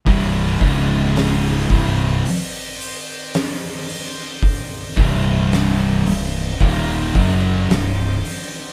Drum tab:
HH |oooooooo|oooooooo|
SD |--o---o-|--o---o-|
BD |oo-o----|oo--oo--|